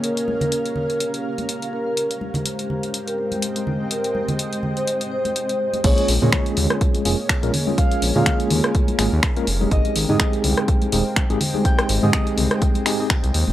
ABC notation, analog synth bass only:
X:1
M:4/4
L:1/16
Q:"Swing 16ths" 1/4=124
K:Bbdor
V:1 name="Analog synth bass" clef=bass
z16 | z16 | z16 | B,,, z B,,, B,, z2 E,, z3 F,,, z2 B,,, z2 |
z2 B,,, B,, z2 E,, z3 A,,, E,, z2 F,,, z | A,,, z A,,, A,, z2 C,, z3 E,,, z2 A,,, z2 | z2 A,,, A,, z2 C,, z6 C,, E,, E,,, |]